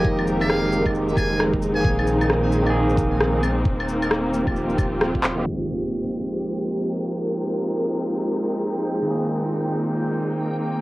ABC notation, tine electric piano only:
X:1
M:4/4
L:1/16
Q:"Swing 16ths" 1/4=133
K:Ebmix
V:1 name="Tine electric piano"
[E,A,B,G]6- [E,A,B,G] [E,A,B,G]8 [E,B,A]- | [E,B,A]6- [E,B,A] [E,B,A]6- [E,B,A] z2 | z6 z [F,CG]8 [E,A,B,G] | [F,A,B,G]16- |
[F,A,B,G]16 | [E,B,A]16 |]